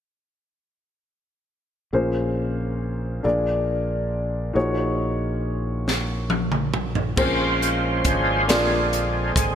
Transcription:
1.93 3.20 A#1 soft
1.93 3.21 A#2 soft
1.93 3.24 C#4 soft
1.93 3.22 F4 soft
1.93 3.22 G#4 soft
1.93 3.23 A#4 soft
1.93 3.25 C5 medium
3.23 4.52 A#1 soft
3.23 4.52 A#2 soft
3.23 4.55 D4 soft
3.23 4.52 F4 soft
3.23 4.54 G#4 soft
3.23 4.56 A#4 soft
3.23 4.56 D5 medium
4.53 7.14 A#1 medium
4.53 5.82 A#2 medium
4.53 7.13 D#4 medium
4.53 7.13 F4 soft
4.53 7.13 F#4 soft
4.53 7.14 G#4 soft
4.53 7.14 C#5 medium
5.88 snare soft
6.30 high tom medium
6.52 mid tom medium
6.74 mid tom medium
6.95 floor tom medium
7.16 8.01 A#1 medium
7.16 8.44 A#2 soft
7.16 8.45 F3 soft
7.16 8.45 G#3 soft
7.16 7.24 C4 soft
7.16 8.45 C#4 soft
7.16 8.05 F4 medium
7.16 8.05 G#4 medium
7.16 8.05 A#4 medium
7.16 8.05 C5 medium
7.16 8.45 C5 soft
7.16 kick medium
7.16 crash medium
7.21 8.07 C#4 medium
7.21 8.03 F4 medium
7.62 closed hi-hat soft
8.05 8.49 G#1 medium
8.05 9.32 D4 medium
8.05 9.33 F4 medium
8.05 9.34 G#4 medium
8.05 kick medium
8.05 closed hi-hat soft
8.47 9.32 A#1 medium
8.47 9.55 A#2 soft
8.47 9.55 D3 soft
8.47 9.55 G#3 soft
8.47 9.55 C4 soft
8.47 9.35 D4 medium
8.47 9.35 F4 soft
8.47 9.36 G#4 soft
8.47 9.36 A#4 soft
8.47 9.36 D5 medium
8.47 snare medium
8.47 closed hi-hat medium
8.93 closed hi-hat soft
9.36 9.55 G#1 medium
9.36 9.55 G#4 medium
9.36 kick medium
9.36 closed hi-hat medium

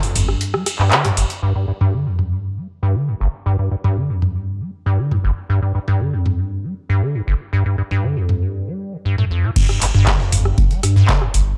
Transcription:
0.03 0.30 F2 medium
0.03 open hi-hat medium
0.15 0.35 G1 medium
0.15 closed hi-hat medium
0.15 mid tom medium
0.15 open hi-hat loud
0.15 ride medium
0.28 0.55 G2 medium
0.28 cross-stick medium
0.41 closed hi-hat medium
0.54 0.64 G3 medium
0.54 cross-stick medium
0.66 cross-stick medium
0.66 closed hi-hat medium
0.66 open hi-hat loud
0.66 ride medium
0.79 0.93 G2 loud
0.79 clap soft
0.91 1.06 D3 medium
0.91 clap loud
0.91 closed hi-hat medium
1.05 1.12 G2 loud
1.05 cross-stick medium
1.05 closed hi-hat medium
1.05 mid tom medium
1.17 1.24 G1 loud
1.17 open hi-hat loud
1.17 ride medium
1.30 closed hi-hat medium
1.43 1.53 G2 loud
1.56 1.66 G2 medium
1.68 1.72 G2 medium
1.81 1.95 G2 loud
1.81 mid tom medium
1.93 2.08 D3 medium
2.06 2.33 F2 medium
2.19 mid tom medium
2.32 2.59 G2 medium
2.57 2.68 G3 medium
2.83 2.97 G2 loud
2.95 3.10 D3 medium
3.08 3.15 G2 loud
3.21 3.28 G1 loud
3.46 3.57 G2 loud
3.59 3.69 G2 medium
3.71 3.76 G2 medium
3.84 3.98 G2 loud
3.84 mid tom medium
3.97 4.11 D3 medium
4.10 4.37 F2 medium
4.22 mid tom medium
4.35 4.62 G2 medium
4.61 4.71 G3 medium
4.86 5.00 G2 loud
4.99 5.13 D3 medium
5.11 5.18 G2 loud
5.11 mid tom medium
5.24 5.31 G1 medium
5.49 5.60 G2 loud
5.62 5.73 G2 medium
5.75 5.79 G2 medium
5.88 6.02 G2 loud
5.88 mid tom medium
6.00 6.15 D3 medium
6.13 6.40 F2 medium
6.26 mid tom medium
6.39 6.65 G2 medium
6.64 6.74 G3 medium
6.89 7.03 G2 loud
7.02 7.16 D3 medium
7.15 7.22 G2 medium
7.27 7.34 G1 loud
7.53 7.63 G2 loud
7.66 7.76 G2 medium
7.78 7.82 G2 medium
7.91 8.05 G2 loud
7.91 mid tom medium
8.04 8.18 D3 medium
8.17 8.43 F2 medium
8.29 mid tom medium
8.42 8.69 G2 medium
8.67 8.94 G3 medium
8.93 8.97 D3 medium
9.05 9.16 G2 medium
9.18 9.25 A2 medium
9.18 mid tom medium
9.31 9.45 F2 medium
9.44 9.51 A#2 loud
9.56 9.67 G2 loud
9.56 kick loud
9.56 closed hi-hat loud
9.56 crash loud
9.69 9.79 G2 medium
9.69 cross-stick medium
9.81 9.92 G1 loud
9.81 9.86 G2 medium
9.81 clap soft
9.81 closed hi-hat medium
9.81 open hi-hat loud
9.94 10.14 G1 medium
9.94 10.09 G2 loud
9.94 snare soft
9.94 mid tom medium
10.07 10.21 D3 medium
10.07 kick loud
10.07 cross-stick medium
10.07 snare loud
10.07 clap loud
10.07 closed hi-hat medium
10.20 10.47 F2 medium
10.20 snare soft
10.32 10.52 G1 medium
10.32 closed hi-hat medium
10.32 mid tom medium
10.32 open hi-hat loud
10.45 10.72 G2 medium
10.45 cross-stick medium
10.58 kick loud
10.58 closed hi-hat medium
10.71 10.81 G3 medium
10.71 closed hi-hat soft
10.83 11.03 G2 loud
10.83 cross-stick medium
10.83 closed hi-hat medium
10.83 open hi-hat loud
10.96 11.10 G2 loud
10.96 snare soft
11.08 11.23 D3 medium
11.08 kick loud
11.08 snare loud
11.08 clap loud
11.08 closed hi-hat medium
11.22 11.28 G2 loud
11.22 cross-stick medium
11.34 11.41 G1 loud
11.34 11.54 G1 medium
11.34 closed hi-hat medium
11.34 open hi-hat loud

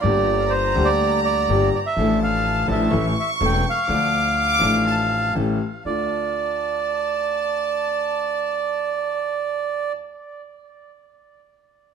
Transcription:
0.01 0.73 G1 medium
0.01 0.73 G1 loud
0.01 0.73 G2 medium
0.01 0.71 D3 medium
0.01 0.73 G3 medium
0.01 0.73 A#3 medium
0.01 0.52 D5 loud
0.01 1.97 A#5 loud
0.06 0.74 G4 medium
0.50 0.88 C5 loud
0.73 1.45 D2 loud
0.73 0.74 D3 medium
0.73 1.45 D3 loud
0.73 1.44 G3 medium
0.73 1.45 A#3 medium
0.77 1.46 G4 loud
0.85 1.20 D5 loud
1.25 1.69 D5 loud
1.48 1.69 G1 medium
1.48 1.70 G1 loud
1.48 1.70 G2 medium
1.48 1.69 D3 medium
1.48 1.70 G3 medium
1.48 1.70 A#3 medium
1.48 1.70 G4 medium
1.75 1.80 D5 medium
1.86 2.19 E5 loud
1.96 2.65 A1 loud
1.96 2.66 A1 loud
1.96 2.66 A2 medium
1.96 2.65 F3 medium
1.96 2.66 A3 medium
1.96 2.66 D4 medium
1.96 2.66 A4 medium
1.96 2.89 A5 medium
2.23 2.67 F5 loud
2.68 2.88 A1 loud
2.68 2.89 A1 loud
2.68 2.88 A2 loud
2.68 2.89 F3 medium
2.68 2.88 A3 medium
2.68 2.88 D4 medium
2.68 2.88 A4 medium
2.72 2.95 E5 medium
2.91 3.12 A1 loud
2.91 3.13 A1 loud
2.91 3.12 A2 medium
2.91 3.12 E3 medium
2.91 3.12 A3 medium
2.91 3.12 C#4 medium
2.91 3.12 A4 medium
2.91 3.89 C#6 loud
2.96 3.06 E5 medium
3.20 3.30 E5 medium
3.40 3.61 E1 loud
3.40 3.61 E2 loud
3.40 3.61 E3 medium
3.40 3.61 A3 medium
3.40 3.61 C#4 medium
3.40 3.61 A4 medium
3.45 3.66 G5 loud
3.69 5.34 F5 loud
3.88 4.58 D2 loud
3.88 4.58 D2 medium
3.88 4.58 D3 loud
3.88 4.57 F3 medium
3.88 4.58 A3 medium
3.88 4.58 D4 medium
3.88 4.59 A4 medium
3.88 4.36 D6 medium
4.37 4.82 D6 loud
4.59 5.31 A1 loud
4.59 5.32 A1 loud
4.59 5.31 A2 loud
4.59 5.30 F3 medium
4.59 5.31 A3 medium
4.59 5.32 D4 medium
4.64 5.33 A4 medium
4.86 5.57 A5 medium
5.35 5.57 A1 medium
5.35 5.57 A2 medium
5.35 5.57 E3 medium
5.35 5.57 A3 medium
5.35 5.57 C#4 medium
5.35 5.57 G4 medium
5.85 6.06 D2 soft
5.85 9.93 D2 medium
5.85 9.92 A3 medium
5.85 9.92 D4 medium
5.85 9.92 F4 medium
5.85 9.92 D5 medium
5.85 9.92 A5 medium

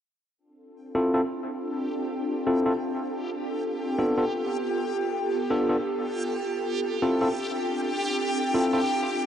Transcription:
0.38 3.39 C4 medium
0.38 3.39 D4 medium
0.38 9.26 F4 medium
0.38 9.26 G4 medium
0.38 9.26 A4 medium
0.38 9.26 G5 medium
0.95 1.12 C4 medium
0.95 1.12 E4 medium
0.95 1.12 F4 medium
0.95 1.12 A4 medium
1.14 1.20 C4 medium
1.14 1.20 E4 medium
1.14 1.20 F4 medium
1.14 1.20 A4 medium
2.47 2.64 C4 medium
2.47 2.64 E4 medium
2.47 2.64 F4 medium
2.47 2.64 A4 medium
2.66 2.72 C4 medium
2.66 2.72 E4 medium
2.66 2.72 F4 medium
2.66 2.72 A4 medium
3.42 6.43 B3 medium
3.42 6.42 G4 medium
3.99 4.16 B3 medium
3.99 4.16 D4 medium
3.99 4.16 F4 medium
3.99 4.16 A4 medium
4.18 4.24 B3 medium
4.18 4.24 D4 medium
4.18 4.24 F4 medium
4.18 4.24 A4 medium
5.50 5.67 B3 medium
5.50 5.67 D4 medium
5.50 5.67 F4 medium
5.50 5.67 A4 medium
5.69 5.76 B3 medium
5.69 5.76 D4 medium
5.69 5.76 F4 medium
5.69 5.76 A4 medium
6.45 9.26 C4 medium
6.45 9.26 D4 medium
7.02 7.19 C4 medium
7.02 7.19 E4 medium
7.02 7.19 F4 medium
7.02 7.19 A4 medium
7.21 7.28 C4 medium
7.21 7.28 E4 medium
7.21 7.28 F4 medium
7.21 7.28 A4 medium
8.54 8.71 C4 medium
8.54 8.71 E4 medium
8.54 8.71 F4 medium
8.54 8.71 A4 medium
8.73 8.80 C4 medium
8.73 8.80 E4 medium
8.73 8.80 F4 medium
8.73 8.80 A4 medium

